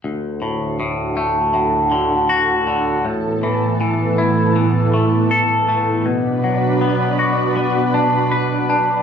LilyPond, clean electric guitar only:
\new Staff \with { instrumentName = "Clean electric guitar" } { \clef bass \time 4/4 \key d \major \tempo 4 = 80 d,8 a,8 a,8 a8 a,8 d8 fis'8 d8 | a,8 e8 e8 e'8 e8 a8 a'8 a8 | b,8 fis8 b8 fis'8 b8 d'8 b'8 d'8 | }